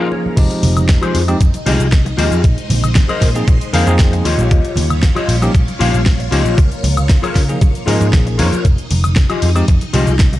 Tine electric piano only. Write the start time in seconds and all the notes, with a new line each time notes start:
Already playing: F3 A#3 C#4 D#4 G#4
0.36 F3 G#3 C4 D#4 G4
1.28 F3 G#3 C4 D#4 G4
1.66 F3 G#3 C4 D#4 G4
2.18 F3 G#3 C4 D#4 G4
3.35 F3 A#3 C4 D#4 G#4
3.73 F3 A#3 C4 D#4 G#4
3.87 F3 A#3 C4 D#4 G#4
5.42 F3 A#3 C#4 D#4 G4
5.80 F3 A#3 C#4 D#4 G4
6.32 F3 A#3 C#4 D#4 G4
7.48 F3 A#3 C#4 D#4 G#4
7.87 F3 A#3 C#4 D#4 G#4
8.39 F3 A#3 C#4 D#4 C#5
9.55 F3 G#3 C4 D#4 G4
9.94 F3 G#3 C4 D#4 G4